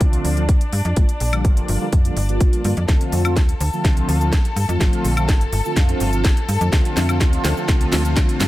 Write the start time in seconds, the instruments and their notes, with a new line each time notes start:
Already playing: analog polysynth D3 F3 A3 C4 F4, string section D4 D5
0.01 fm bass C2, kick, closed hi-hat
0.13 closed hi-hat
0.25 fm bass D2, open hi-hat
0.37 analog polysynth D3 F3 A3 C4 F4, closed hi-hat
0.49 kick, closed hi-hat
0.61 closed hi-hat
0.73 fm bass G2, open hi-hat
0.85 fm bass F2, closed hi-hat
0.96 fm bass G1, analog polysynth D3 F3 G3 A#3 F4, kick, closed hi-hat
1.09 closed hi-hat
1.20 fm bass A#1, open hi-hat
1.32 analog polysynth D3 F3 G3 A#3 F4, closed hi-hat, high woodblock
1.45 fm bass G1, kick, closed hi-hat
1.57 closed hi-hat
1.68 fm bass G1, open hi-hat
1.81 analog polysynth D3 F3 G3 A#3 F4
1.92 fm bass F2, kick, closed hi-hat
2.04 analog polysynth D3 F3 G3 A#3 F4, closed hi-hat
2.17 fm bass G1, open hi-hat
2.28 analog polysynth D3 F3 G3 A#3 F4, closed hi-hat
2.40 kick, closed hi-hat
2.53 closed hi-hat
2.64 fm bass G2, analog polysynth D3 F3 G3 A#3 F4, open hi-hat
2.77 fm bass F2, closed hi-hat
2.88 fm bass D2, analog polysynth D3 F3 A3 C4 F4, string section A4 A5, kick, snare, closed hi-hat, shaker
3.01 closed hi-hat
3.12 fm bass F2, open hi-hat, shaker
3.25 analog polysynth D3 F3 A3 C4 F4, closed hi-hat, high woodblock, shaker
3.36 fm bass D2, kick, snare, closed hi-hat, shaker
3.49 closed hi-hat
3.60 fm bass D2, open hi-hat, shaker
3.73 analog polysynth D3 F3 A3 C4 F4, shaker
3.84 fm bass C2, analog polysynth D3 F3 A3 C4 F4, kick, snare, closed hi-hat, shaker
3.97 closed hi-hat
4.08 fm bass D2, open hi-hat, shaker
4.20 analog polysynth D3 F3 A3 C4 F4, closed hi-hat, shaker
4.33 kick, snare, closed hi-hat, shaker
4.45 closed hi-hat
4.56 fm bass G2, open hi-hat, shaker
4.69 fm bass F2, analog polysynth D3 F3 A3 C4 F4, closed hi-hat, shaker
4.80 fm bass G1, analog polysynth D3 F3 A3 C4 F4, kick, snare, closed hi-hat, shaker
4.93 closed hi-hat
5.05 fm bass A#1, open hi-hat, shaker
5.17 analog polysynth D3 F3 A3 C4 F4, closed hi-hat, high woodblock, shaker
5.29 fm bass G1, kick, snare, closed hi-hat, shaker
5.41 closed hi-hat
5.53 fm bass G1, open hi-hat, shaker
5.65 analog polysynth D3 F3 A3 C4 F4, shaker
5.76 fm bass F2, analog polysynth D3 F3 A3 C4 F4, kick, snare, closed hi-hat, shaker
5.89 closed hi-hat
6.00 fm bass G1, open hi-hat, shaker
6.13 analog polysynth D3 F3 A3 C4 F4, closed hi-hat, shaker
6.25 kick, snare, closed hi-hat, shaker
6.37 closed hi-hat
6.49 fm bass G2, open hi-hat, shaker
6.61 fm bass F2, analog polysynth D3 F3 A3 C4 F4, closed hi-hat, shaker
6.72 fm bass D2, analog polysynth D3 F3 A3 C4 F4, kick, snare, closed hi-hat, shaker
6.85 closed hi-hat
6.97 fm bass F2, snare, open hi-hat, shaker
7.09 analog polysynth D3 F3 A3 C4 F4, closed hi-hat, high woodblock, shaker
7.20 fm bass D2, analog polysynth D3 F3 A3 C4 F4, kick, snare, closed hi-hat, shaker
7.33 closed hi-hat
7.45 fm bass D2, snare, open hi-hat, shaker
7.57 analog polysynth D3 F3 A3 C4 F4, shaker
7.68 fm bass C2, analog polysynth D3 F3 A3 C4 F4, kick, snare, closed hi-hat, shaker
7.81 closed hi-hat
7.92 fm bass D2, snare, open hi-hat, shaker
8.05 analog polysynth D3 F3 A3 C4 F4, closed hi-hat, shaker
8.16 analog polysynth D3 F3 A3 C4 F4, kick, snare, closed hi-hat, shaker
8.29 closed hi-hat
8.40 fm bass G2, snare, open hi-hat, shaker